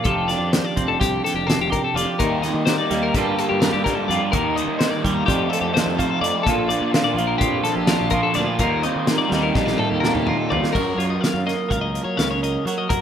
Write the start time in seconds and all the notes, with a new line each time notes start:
Already playing: D4
0.04 F1 F3 G4 A4, kick, closed hi-hat
0.28 D4 D5, snare, closed hi-hat
0.39 F2
0.52 C5, snare, closed hi-hat
0.65 D5
0.76 F1 C4, kick, closed hi-hat
0.88 A4
1.00 C2 G4, kick, snare, closed hi-hat
1.24 G4 A4, snare, closed hi-hat
1.34 F1 G4
1.47 C3 A4, snare, closed hi-hat
1.59 F1 G4
1.70 G4 A#4, kick, closed hi-hat
1.84 A4
1.94 F1 F3 G4 D5, snare, closed hi-hat
2.19 D#2 A#2 D#3 G3 D#4 A#4, kick, closed hi-hat
2.23 A#3 D#4
2.42 A#3 D#4 D#5, snare, closed hi-hat
2.47 D#3 G3
2.54 D#3
2.66 D#3 G3 A#3 C5, snare, closed hi-hat
2.71 D#4
2.78 D5
2.91 D#2 G3 A#3 D#4, snare, closed hi-hat
2.95 D#3
3.03 A#4
3.14 G2 D3 G3 A#3 D4 F4 G4 A4, kick, snare, closed hi-hat
3.39 A#3 A4, closed hi-hat
3.49 G2 G4
3.60 G2 D3 G3 A#3 A#4, snare, closed hi-hat
3.65 D4 G4
3.73 G2 G4
3.84 G3 A#3 D4 G4 A#4, kick, snare, closed hi-hat
3.95 A4
4.08 F2 G2 D3 G3 A#3 D4 F4 G4 D5, closed hi-hat
4.32 D#2 A#2 D#3 G3 A#3 D#4 A#4, kick, closed hi-hat
4.37 D#4
4.56 D#3 G3 A#3 D#4 D#5, closed hi-hat
4.68 D#3
4.79 D#3 G3 A#3 C5, snare, closed hi-hat
4.83 D#4
4.91 D5
5.04 D#2 G3 A#3 D#4, kick, closed hi-hat
5.09 D#3
5.14 A#4
5.26 F2 C3 F3 G4 D5, kick, closed hi-hat
5.30 F3 A3 C4 D#4
5.50 A4, closed hi-hat
5.61 F2 G4
5.74 F2 C3 F3 A3 C4 D#4 C5, snare, closed hi-hat
5.86 F2 A4
5.96 A3 C4 D#4 F4 C5, kick, closed hi-hat
6.00 F3
6.10 A4
6.21 F2 C3 F3 A3 C4 D#4 D5, closed hi-hat
6.43 A#1 A#2 F3 A4, kick, closed hi-hat
6.47 A#2 A#3 D4 F4
6.69 D4 F4 D5, closed hi-hat
6.73 A#3
6.81 A#2
6.92 F3 A#3 D4 F4 C5, snare, closed hi-hat
7.04 D5
7.15 A#1 F3 F4, closed hi-hat
7.19 A#3 D4
7.27 A#4
7.38 F2 F4 G4, kick, closed hi-hat
7.63 A4, snare, closed hi-hat
7.75 A#1 G4
7.87 A#2 F3 A#4, snare, closed hi-hat
7.92 A#3 D4 F4
7.99 A#1 G4
8.10 D4 F4 A#4, kick, closed hi-hat
8.15 A#3
8.23 A4
8.34 D2 A#2 F3 D4 D5, snare, closed hi-hat
8.39 A#3 D4 F4
8.47 F4
8.59 D#2 A#2 D#3 F4 A#4, kick, closed hi-hat
8.63 D#3 G3 A#3 D#4
8.83 A#3 C4 D#4 D#5, closed hi-hat
8.87 D#3 G3
8.96 D#3
9.07 D#3 G3 C5, snare, closed hi-hat
9.11 A#3 D#4
9.18 D5
9.29 D#2 G3 D#4, snare
9.34 D#3 G3 A#3
9.43 A#4
9.54 A#1 D4 G4, kick, snare
9.66 F4, snare
9.78 A4, mid tom
9.90 D#2 G4
10.00 D#2 A#2 A#4, snare
10.05 A#2 D#3 G3 A#3 D#4
10.14 D#2 G4, mid tom
10.27 D#3 G3 A#3 D#4 F4 A#4, mid tom
10.38 A4
10.50 D#2 A#2 D#3 G3 F4 D5, floor tom
10.54 A#3 D#4
10.64 snare
10.73 F#2 F#3 A#4, kick, crash
10.98 F#2 F4 C#5, closed hi-hat
11.10 D#5
11.21 F5, snare, closed hi-hat
11.34 F#2
11.47 A#3 D#5, snare, closed hi-hat
11.69 C#2 A#4 F5, kick, closed hi-hat
11.81 D#5
11.95 closed hi-hat
12.04 F#3 C#5
12.17 C#2 C#3 F5, snare, closed hi-hat
12.31 C#5
12.43 A#4 D#5, closed hi-hat
12.65 F#3 A#4 C#5, closed hi-hat
12.78 D#5
12.89 F#2 F#3 A#4, kick, closed hi-hat